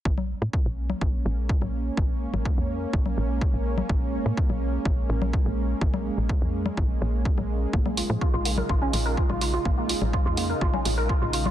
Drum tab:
HH |----------------|----------------|----------------|----------------|
CG |-O-----O-----O--|---O-----O-----O|-----O-----O----|-O-----O-----O--|
BD |o---o---o---o---|o---o---o---o---|o---o---o---o---|o---o---o---o---|

HH |--o---o---o---o-|--o---o---o---o-|
CG |-O-----O-----O--|---O-----O-----O|
BD |o---o---o---o---|o---o---o---o---|